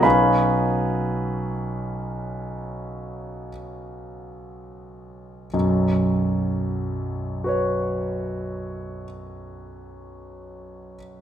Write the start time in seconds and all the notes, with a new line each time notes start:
0.00 B1 B3 C#4 D#4 F#4 B4 F5 B5
0.04 G#5
5.54 B1 F#2
7.44 F#4 B4
7.48 C#5